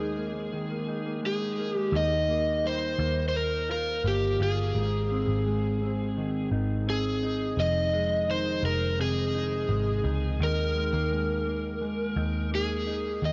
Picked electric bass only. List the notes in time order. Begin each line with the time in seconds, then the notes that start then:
Already playing: D#2
1.92 D#2
2.99 D#2
4.04 G1
4.40 G1
4.75 G#1
5.28 G#1
6.51 G#1
7.57 F1
8.63 F1
9.69 G#1
10.04 C#2
10.40 D#2
10.93 D#2
12.16 D#2
13.22 D#2